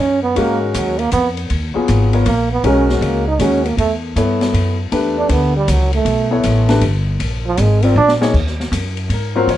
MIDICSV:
0, 0, Header, 1, 6, 480
1, 0, Start_track
1, 0, Tempo, 380228
1, 456, Time_signature, 3, 2, 24, 8
1, 12087, End_track
2, 0, Start_track
2, 0, Title_t, "Grand piano"
2, 0, Program_c, 0, 0
2, 451, Note_on_c, 0, 56, 67
2, 454, Note_on_c, 0, 61, 60
2, 459, Note_on_c, 0, 66, 62
2, 470, Note_on_c, 0, 70, 77
2, 1187, Note_off_c, 0, 56, 0
2, 1189, Note_off_c, 0, 61, 0
2, 1191, Note_off_c, 0, 66, 0
2, 1196, Note_off_c, 0, 70, 0
2, 2198, Note_on_c, 0, 54, 64
2, 2207, Note_on_c, 0, 59, 63
2, 2214, Note_on_c, 0, 65, 58
2, 2217, Note_on_c, 0, 68, 76
2, 2653, Note_off_c, 0, 54, 0
2, 2657, Note_off_c, 0, 59, 0
2, 2661, Note_off_c, 0, 65, 0
2, 2662, Note_off_c, 0, 68, 0
2, 2686, Note_on_c, 0, 59, 63
2, 2696, Note_on_c, 0, 65, 60
2, 2701, Note_on_c, 0, 70, 65
2, 2707, Note_on_c, 0, 73, 72
2, 2835, Note_off_c, 0, 59, 0
2, 2840, Note_off_c, 0, 65, 0
2, 2843, Note_off_c, 0, 70, 0
2, 2845, Note_off_c, 0, 73, 0
2, 3335, Note_on_c, 0, 56, 71
2, 3335, Note_on_c, 0, 61, 70
2, 3346, Note_on_c, 0, 66, 64
2, 3352, Note_on_c, 0, 70, 84
2, 4068, Note_off_c, 0, 56, 0
2, 4068, Note_off_c, 0, 61, 0
2, 4074, Note_off_c, 0, 66, 0
2, 4076, Note_off_c, 0, 70, 0
2, 4290, Note_on_c, 0, 56, 57
2, 4300, Note_on_c, 0, 61, 55
2, 4303, Note_on_c, 0, 66, 58
2, 4312, Note_on_c, 0, 70, 59
2, 4577, Note_off_c, 0, 56, 0
2, 4582, Note_off_c, 0, 61, 0
2, 4583, Note_off_c, 0, 66, 0
2, 4588, Note_off_c, 0, 70, 0
2, 5256, Note_on_c, 0, 59, 68
2, 5262, Note_on_c, 0, 64, 57
2, 5267, Note_on_c, 0, 69, 55
2, 5274, Note_on_c, 0, 73, 68
2, 5988, Note_off_c, 0, 59, 0
2, 5991, Note_off_c, 0, 64, 0
2, 5994, Note_off_c, 0, 69, 0
2, 5997, Note_off_c, 0, 73, 0
2, 6207, Note_on_c, 0, 57, 62
2, 6216, Note_on_c, 0, 62, 57
2, 6220, Note_on_c, 0, 67, 58
2, 6229, Note_on_c, 0, 71, 71
2, 6944, Note_off_c, 0, 57, 0
2, 6948, Note_off_c, 0, 62, 0
2, 6951, Note_off_c, 0, 67, 0
2, 6955, Note_off_c, 0, 71, 0
2, 7963, Note_on_c, 0, 59, 68
2, 7964, Note_on_c, 0, 64, 66
2, 7967, Note_on_c, 0, 69, 61
2, 7983, Note_on_c, 0, 73, 70
2, 8415, Note_off_c, 0, 59, 0
2, 8416, Note_off_c, 0, 64, 0
2, 8417, Note_off_c, 0, 69, 0
2, 8425, Note_off_c, 0, 73, 0
2, 8444, Note_on_c, 0, 57, 67
2, 8447, Note_on_c, 0, 62, 69
2, 8451, Note_on_c, 0, 67, 66
2, 8458, Note_on_c, 0, 71, 70
2, 8594, Note_off_c, 0, 57, 0
2, 8595, Note_off_c, 0, 62, 0
2, 8597, Note_off_c, 0, 67, 0
2, 8600, Note_off_c, 0, 71, 0
2, 9887, Note_on_c, 0, 60, 68
2, 9891, Note_on_c, 0, 65, 62
2, 9897, Note_on_c, 0, 70, 57
2, 9906, Note_on_c, 0, 74, 64
2, 10036, Note_off_c, 0, 60, 0
2, 10038, Note_off_c, 0, 65, 0
2, 10041, Note_off_c, 0, 70, 0
2, 10045, Note_off_c, 0, 74, 0
2, 10360, Note_on_c, 0, 58, 73
2, 10364, Note_on_c, 0, 63, 70
2, 10366, Note_on_c, 0, 68, 74
2, 10374, Note_on_c, 0, 73, 89
2, 10513, Note_off_c, 0, 58, 0
2, 10515, Note_off_c, 0, 63, 0
2, 10516, Note_off_c, 0, 68, 0
2, 10520, Note_off_c, 0, 73, 0
2, 11530, Note_on_c, 0, 70, 61
2, 11809, Note_off_c, 0, 70, 0
2, 11811, Note_on_c, 0, 54, 81
2, 11813, Note_on_c, 0, 60, 72
2, 11816, Note_on_c, 0, 65, 74
2, 11820, Note_on_c, 0, 72, 81
2, 11828, Note_on_c, 0, 70, 85
2, 11959, Note_off_c, 0, 54, 0
2, 11961, Note_off_c, 0, 60, 0
2, 11962, Note_off_c, 0, 65, 0
2, 11968, Note_off_c, 0, 70, 0
2, 11976, Note_off_c, 0, 72, 0
2, 11999, Note_on_c, 0, 73, 79
2, 12087, Note_off_c, 0, 73, 0
2, 12087, End_track
3, 0, Start_track
3, 0, Title_t, "Trombone"
3, 0, Program_c, 1, 57
3, 0, Note_on_c, 1, 61, 83
3, 278, Note_off_c, 1, 61, 0
3, 286, Note_on_c, 1, 59, 80
3, 470, Note_on_c, 1, 58, 78
3, 489, Note_off_c, 1, 59, 0
3, 780, Note_off_c, 1, 58, 0
3, 789, Note_on_c, 1, 51, 50
3, 941, Note_on_c, 1, 54, 75
3, 960, Note_off_c, 1, 51, 0
3, 1244, Note_on_c, 1, 58, 86
3, 1263, Note_off_c, 1, 54, 0
3, 1411, Note_off_c, 1, 58, 0
3, 1427, Note_on_c, 1, 59, 81
3, 1613, Note_off_c, 1, 59, 0
3, 2865, Note_on_c, 1, 58, 91
3, 3155, Note_off_c, 1, 58, 0
3, 3177, Note_on_c, 1, 59, 85
3, 3347, Note_on_c, 1, 61, 89
3, 3366, Note_off_c, 1, 59, 0
3, 3654, Note_off_c, 1, 61, 0
3, 3662, Note_on_c, 1, 54, 65
3, 3826, Note_on_c, 1, 58, 75
3, 3845, Note_off_c, 1, 54, 0
3, 4128, Note_off_c, 1, 58, 0
3, 4136, Note_on_c, 1, 63, 92
3, 4310, Note_on_c, 1, 61, 81
3, 4329, Note_off_c, 1, 63, 0
3, 4625, Note_on_c, 1, 58, 76
3, 4644, Note_off_c, 1, 61, 0
3, 4769, Note_off_c, 1, 58, 0
3, 4776, Note_on_c, 1, 57, 84
3, 4966, Note_off_c, 1, 57, 0
3, 6534, Note_on_c, 1, 62, 86
3, 6711, Note_on_c, 1, 59, 77
3, 6730, Note_off_c, 1, 62, 0
3, 7014, Note_off_c, 1, 59, 0
3, 7021, Note_on_c, 1, 55, 82
3, 7201, Note_on_c, 1, 54, 83
3, 7220, Note_off_c, 1, 55, 0
3, 7495, Note_off_c, 1, 54, 0
3, 7502, Note_on_c, 1, 57, 86
3, 7943, Note_off_c, 1, 57, 0
3, 9422, Note_on_c, 1, 53, 96
3, 9594, Note_on_c, 1, 56, 79
3, 9613, Note_off_c, 1, 53, 0
3, 9881, Note_on_c, 1, 60, 86
3, 9900, Note_off_c, 1, 56, 0
3, 10049, Note_off_c, 1, 60, 0
3, 10066, Note_on_c, 1, 62, 100
3, 10253, Note_off_c, 1, 62, 0
3, 12087, End_track
4, 0, Start_track
4, 0, Title_t, "Upright bass"
4, 0, Program_c, 2, 32
4, 0, Note_on_c, 2, 42, 80
4, 442, Note_off_c, 2, 42, 0
4, 469, Note_on_c, 2, 44, 74
4, 928, Note_off_c, 2, 44, 0
4, 942, Note_on_c, 2, 39, 90
4, 1404, Note_off_c, 2, 39, 0
4, 1416, Note_on_c, 2, 41, 90
4, 1881, Note_off_c, 2, 41, 0
4, 1896, Note_on_c, 2, 39, 78
4, 2191, Note_off_c, 2, 39, 0
4, 2383, Note_on_c, 2, 32, 93
4, 2844, Note_off_c, 2, 32, 0
4, 2853, Note_on_c, 2, 34, 88
4, 3319, Note_off_c, 2, 34, 0
4, 3328, Note_on_c, 2, 35, 77
4, 3792, Note_off_c, 2, 35, 0
4, 3799, Note_on_c, 2, 37, 87
4, 4271, Note_off_c, 2, 37, 0
4, 4284, Note_on_c, 2, 39, 85
4, 4754, Note_off_c, 2, 39, 0
4, 4763, Note_on_c, 2, 40, 77
4, 5233, Note_off_c, 2, 40, 0
4, 5252, Note_on_c, 2, 43, 87
4, 5718, Note_off_c, 2, 43, 0
4, 5725, Note_on_c, 2, 42, 79
4, 6194, Note_off_c, 2, 42, 0
4, 6212, Note_on_c, 2, 40, 73
4, 6674, Note_off_c, 2, 40, 0
4, 6682, Note_on_c, 2, 38, 89
4, 7153, Note_off_c, 2, 38, 0
4, 7170, Note_on_c, 2, 37, 87
4, 7630, Note_off_c, 2, 37, 0
4, 7638, Note_on_c, 2, 35, 81
4, 8111, Note_off_c, 2, 35, 0
4, 8130, Note_on_c, 2, 33, 93
4, 8594, Note_off_c, 2, 33, 0
4, 8602, Note_on_c, 2, 31, 86
4, 9073, Note_off_c, 2, 31, 0
4, 9084, Note_on_c, 2, 34, 77
4, 9555, Note_off_c, 2, 34, 0
4, 9570, Note_on_c, 2, 32, 97
4, 10038, Note_off_c, 2, 32, 0
4, 10045, Note_on_c, 2, 34, 91
4, 10516, Note_off_c, 2, 34, 0
4, 10521, Note_on_c, 2, 39, 77
4, 10994, Note_off_c, 2, 39, 0
4, 11003, Note_on_c, 2, 42, 93
4, 11471, Note_off_c, 2, 42, 0
4, 11478, Note_on_c, 2, 44, 75
4, 11954, Note_off_c, 2, 44, 0
4, 11960, Note_on_c, 2, 39, 78
4, 12087, Note_off_c, 2, 39, 0
4, 12087, End_track
5, 0, Start_track
5, 0, Title_t, "Muted upright bass strokes"
5, 2223, Note_on_c, 9, 29, 39
5, 2349, Note_off_c, 9, 29, 0
5, 12087, End_track
6, 0, Start_track
6, 0, Title_t, "Drums"
6, 457, Note_on_c, 9, 51, 59
6, 583, Note_off_c, 9, 51, 0
6, 938, Note_on_c, 9, 44, 63
6, 938, Note_on_c, 9, 51, 61
6, 1064, Note_off_c, 9, 44, 0
6, 1064, Note_off_c, 9, 51, 0
6, 1246, Note_on_c, 9, 51, 47
6, 1373, Note_off_c, 9, 51, 0
6, 1408, Note_on_c, 9, 44, 58
6, 1408, Note_on_c, 9, 51, 65
6, 1534, Note_off_c, 9, 44, 0
6, 1534, Note_off_c, 9, 51, 0
6, 1731, Note_on_c, 9, 51, 47
6, 1857, Note_off_c, 9, 51, 0
6, 1891, Note_on_c, 9, 51, 60
6, 2018, Note_off_c, 9, 51, 0
6, 2373, Note_on_c, 9, 44, 58
6, 2373, Note_on_c, 9, 51, 65
6, 2499, Note_off_c, 9, 44, 0
6, 2499, Note_off_c, 9, 51, 0
6, 2690, Note_on_c, 9, 51, 46
6, 2816, Note_off_c, 9, 51, 0
6, 2850, Note_on_c, 9, 51, 69
6, 2976, Note_off_c, 9, 51, 0
6, 3332, Note_on_c, 9, 51, 63
6, 3458, Note_off_c, 9, 51, 0
6, 3655, Note_on_c, 9, 38, 47
6, 3781, Note_off_c, 9, 38, 0
6, 3815, Note_on_c, 9, 51, 62
6, 3942, Note_off_c, 9, 51, 0
6, 4287, Note_on_c, 9, 44, 55
6, 4287, Note_on_c, 9, 51, 70
6, 4413, Note_off_c, 9, 44, 0
6, 4413, Note_off_c, 9, 51, 0
6, 4615, Note_on_c, 9, 51, 49
6, 4741, Note_off_c, 9, 51, 0
6, 4777, Note_on_c, 9, 51, 62
6, 4903, Note_off_c, 9, 51, 0
6, 5257, Note_on_c, 9, 44, 47
6, 5257, Note_on_c, 9, 51, 64
6, 5384, Note_off_c, 9, 44, 0
6, 5384, Note_off_c, 9, 51, 0
6, 5568, Note_on_c, 9, 51, 46
6, 5573, Note_on_c, 9, 38, 49
6, 5694, Note_off_c, 9, 51, 0
6, 5699, Note_off_c, 9, 38, 0
6, 5736, Note_on_c, 9, 51, 71
6, 5862, Note_off_c, 9, 51, 0
6, 6211, Note_on_c, 9, 51, 63
6, 6337, Note_off_c, 9, 51, 0
6, 6683, Note_on_c, 9, 51, 68
6, 6809, Note_off_c, 9, 51, 0
6, 7169, Note_on_c, 9, 44, 65
6, 7169, Note_on_c, 9, 51, 80
6, 7296, Note_off_c, 9, 44, 0
6, 7296, Note_off_c, 9, 51, 0
6, 7483, Note_on_c, 9, 51, 49
6, 7609, Note_off_c, 9, 51, 0
6, 7646, Note_on_c, 9, 51, 67
6, 7772, Note_off_c, 9, 51, 0
6, 8124, Note_on_c, 9, 44, 55
6, 8124, Note_on_c, 9, 51, 71
6, 8250, Note_off_c, 9, 44, 0
6, 8250, Note_off_c, 9, 51, 0
6, 8441, Note_on_c, 9, 51, 50
6, 8446, Note_on_c, 9, 38, 55
6, 8567, Note_off_c, 9, 51, 0
6, 8572, Note_off_c, 9, 38, 0
6, 8602, Note_on_c, 9, 51, 65
6, 8728, Note_off_c, 9, 51, 0
6, 9088, Note_on_c, 9, 51, 68
6, 9215, Note_off_c, 9, 51, 0
6, 9561, Note_on_c, 9, 44, 58
6, 9561, Note_on_c, 9, 51, 71
6, 9687, Note_off_c, 9, 44, 0
6, 9687, Note_off_c, 9, 51, 0
6, 9878, Note_on_c, 9, 51, 52
6, 10004, Note_off_c, 9, 51, 0
6, 10204, Note_on_c, 9, 38, 63
6, 10331, Note_off_c, 9, 38, 0
6, 10372, Note_on_c, 9, 38, 89
6, 10499, Note_off_c, 9, 38, 0
6, 10527, Note_on_c, 9, 36, 73
6, 10530, Note_on_c, 9, 49, 69
6, 10653, Note_off_c, 9, 36, 0
6, 10657, Note_off_c, 9, 49, 0
6, 10692, Note_on_c, 9, 38, 27
6, 10819, Note_off_c, 9, 38, 0
6, 10858, Note_on_c, 9, 38, 43
6, 10985, Note_off_c, 9, 38, 0
6, 11014, Note_on_c, 9, 44, 66
6, 11014, Note_on_c, 9, 51, 77
6, 11141, Note_off_c, 9, 44, 0
6, 11141, Note_off_c, 9, 51, 0
6, 11324, Note_on_c, 9, 51, 48
6, 11450, Note_off_c, 9, 51, 0
6, 11487, Note_on_c, 9, 51, 66
6, 11613, Note_off_c, 9, 51, 0
6, 11976, Note_on_c, 9, 51, 59
6, 12087, Note_off_c, 9, 51, 0
6, 12087, End_track
0, 0, End_of_file